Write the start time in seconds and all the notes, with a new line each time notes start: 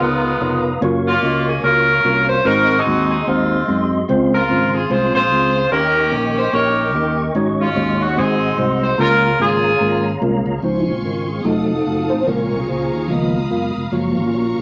Already playing: F5
0.00 C#2 C#3 G#3 B3 D#4 F4 A#4 B4 C#5 A#5 D#6
0.40 F1 B3 D#4 F4 A#4 C#5
0.81 F#1 A#3 C#4 F4 F#4 A#4 C#5 C#6
1.07 A#3 C#4 F4
1.22 C#2 A#3 C#4 F4 F#4 D#5
1.48 G#4
1.63 C#2 A#3 C#4 F4 F#4 A#4 C#5
2.04 C2 A#3 C#4 F4 F#4 C#5
2.29 C5
2.45 G#1 G#2 G#3 C4 D#4 F#4 G#4 A#4 C5 D#5 C6
2.78 C4 D#4 G#4
2.85 D#2 G#3 C4 D#4 F#4 G#4
3.11 G#4
3.27 D#2 G#3 C4 D#4 F4 F#4 C5
3.67 F#2 G#3 C4 D#4 F#4 D#5
4.08 C#2 C#3 G#3 C4 C#4 F4 C5 F5
4.34 F4 A#4
4.49 G#1 G#3 C4 C#4 F4 C5
4.74 G#4
4.89 C2 G#3 C4 C#4 F4 G#4 C5
5.15 A#1 F4 G#4 C5
5.31 C#2 G#3 C4 C#4 F4 G#4
5.72 D#2 D#3 A#3 C#4 D#4 G4 A#4 C#5 D#5 G5 C#6
6.12 A#1 A#3 C#4 D#4 G4 A#4
6.37 C5
6.53 A#1 A#3 C#4 D#4 G4 A#4 C#5
6.94 D#2 A#3 C#4 D#4 G4 D#5
7.35 G#1 G#2 G#3 C#4 D#4 F#4 G#4 C#5
7.60 C#4 F4
7.75 D#2 G#3 C#4 D#4 F#4 C#5
8.01 F#4
8.17 G#1 G#2 G#3 C4 D#4 F#4 G#4 C5 F#5 C6
8.58 C2 G#3 C4 D#4 F#4 C5
8.83 C5
8.98 C#2 C#3 G#3 A#3 C#4 F4 G#4 A#4 C#5 F5 A#5
9.39 G#1 G#3 A#3 C#4 F4 G#4 A#4
9.80 G#1 G#3 A#3 C#4 F4 A#4
10.21 C2 G#3 A#3 C#4 F4 A#4
10.46 C#2
10.62 C#2 C#3 F3 G#3 C4 C#4 D#4 F4 C5 F5 G#5 C6 C#6
10.79 E4
10.87 A#1 G#3 C4 F4
11.04 G#1 G#3 C#4 F4 A#4
11.29 G#4
11.44 F1 F#3 A3 C4 D#4 F4 F#4 A4 D#5 F#5 A5 D#6
11.86 F#1 A3 F4 F#4 F5
12.10 A1 C5
12.27 A#1 A#2 C#3 G#3 A#3 C4 C#4 F4 G#4 A#4 C#5 G#5 A#5 C#6
12.52 C2
12.60 C#4 F4 G#4
12.68 C#2 A#3 F4 G#4 C5
12.92 D#2 G#4
13.08 C#2 C#3 D#3 F3 G#3 A#3 B3 F4 A#4 D#5 B5 D#6
13.50 F#1 B3 F4 A#4 F5
13.76 F1
13.91 F#1 F3 G#3 A#3 F4 F#4 C#5 A#5 C#6
14.17 G#1 A#3 C#4 F4
14.33 A#1 A#3 F4 F#4 C#5
14.58 C2